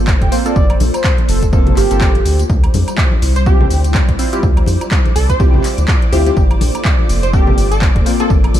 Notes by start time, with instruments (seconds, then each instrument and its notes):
Already playing: analog synth bass G1, analog synth pad A#3 F4 A4 C5
0.07 kick, clap, tambourine
0.22 analog synth bass F1, soft synth lead G5, kick, closed hi-hat
0.32 synth keys A#3 C4 F4 C5, open hi-hat, tambourine
0.46 synth keys A#3 C4 F4 A4, soft synth lead D5, closed hi-hat, tambourine
0.56 analog synth bass G1, kick, tambourine
0.70 closed hi-hat, high woodblock
0.80 analog synth bass A#1, open hi-hat, tambourine, high conga
0.94 soft synth lead C5, closed hi-hat, tambourine, high woodblock
1.04 kick, clap, tambourine
1.18 closed hi-hat, high conga
1.28 analog synth bass F1, soft synth lead A4, open hi-hat, tambourine
1.43 kick, closed hi-hat, tambourine
1.53 synth keys A#3 C4 F4 A4, kick, tambourine
1.67 closed hi-hat, low conga
1.77 analog synth bass G1, synth keys A#3 C4 F4 G4, soft synth lead G4, clap, open hi-hat, tambourine
1.91 analog synth bass G1, synth keys A#3 C4 F4 A4, closed hi-hat, tambourine
2.01 kick, clap, tambourine
2.15 closed hi-hat
2.25 analog synth bass D2, open hi-hat, tambourine
2.39 closed hi-hat, tambourine
2.50 analog synth bass D2, analog synth pad G3 E4 F4 D5 D6, kick, tambourine
2.64 closed hi-hat, high woodblock
2.74 analog synth bass F2, open hi-hat, tambourine, high conga
2.88 closed hi-hat, tambourine, high woodblock
2.98 kick, clap, tambourine
3.12 high conga
3.22 analog synth bass C2, open hi-hat, tambourine
3.36 digital synth lead C5, closed hi-hat, tambourine
3.46 synth keys C4 E4 F4 G4, digital synth lead G4, kick, tambourine
3.61 low conga
3.70 analog synth bass D2, open hi-hat, tambourine
3.84 closed hi-hat, tambourine
3.94 kick, clap, tambourine
4.09 analog synth bass C2, kick, closed hi-hat
4.19 synth keys C4 E4 F4 C5, open hi-hat, tambourine
4.33 synth keys C4 E4 F4 G4, closed hi-hat, tambourine
4.43 analog synth bass D2, kick, tambourine
4.57 closed hi-hat, high woodblock
4.66 analog synth bass F2, open hi-hat, tambourine, high conga
4.81 closed hi-hat, tambourine, high woodblock
4.91 kick, clap, tambourine
5.05 closed hi-hat, high conga
5.16 analog synth bass C2, digital synth lead A4, open hi-hat, tambourine
5.29 digital synth lead C5, kick, closed hi-hat, tambourine
5.40 synth keys C4 E4 F4 G4, kick, tambourine
5.54 low conga
5.64 clap, open hi-hat, tambourine
5.78 analog synth bass D2, closed hi-hat, tambourine
5.88 kick, clap, tambourine
6.02 closed hi-hat
6.12 analog synth bass D2, synth keys C4 E4 F4 C5, digital synth lead G4, open hi-hat, tambourine
6.26 synth keys C4 E4 F4 G4, closed hi-hat, tambourine
6.37 analog synth bass G1, analog synth pad A#3 A4, kick, tambourine
6.51 closed hi-hat, high woodblock
6.61 analog synth bass A#1, open hi-hat, tambourine, high conga
6.75 closed hi-hat, tambourine, high woodblock
6.85 kick, clap, tambourine
6.99 high conga
7.09 analog synth bass F1, open hi-hat, tambourine
7.23 digital synth lead C5, closed hi-hat, tambourine
7.33 synth keys A#3 C4 F4 A4, digital synth lead G4, kick, tambourine
7.47 low conga
7.58 analog synth bass G1, open hi-hat, tambourine
7.71 digital synth lead A4, closed hi-hat, tambourine
7.82 kick, clap, tambourine
7.96 analog synth bass F1, kick, closed hi-hat
8.06 synth keys A#3 C4 F4 C5, open hi-hat, tambourine
8.20 synth keys A#3 C4 F4 A4, digital synth lead A4, closed hi-hat, tambourine
8.30 analog synth bass G1, kick, tambourine
8.44 closed hi-hat, high woodblock
8.54 analog synth bass A#1, open hi-hat, tambourine, high conga